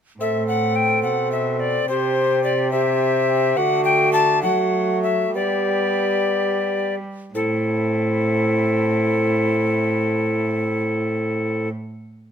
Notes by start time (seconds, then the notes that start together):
0.19 A2 C4 A4 E5
0.48 F#5
0.75 G5
1.03 B2 F#5
1.32 E5
1.60 D5
1.88 C3 C4 G4 C5
2.44 D5
2.71 C4 G4 E5
3.57 D3 A3 F#4 F#5
3.85 G5
4.13 A5
4.42 F#3 A3 F#4 F#5
5.03 E5
5.35 G3 B3 G4 D5
7.34 A2 C4 E4 A4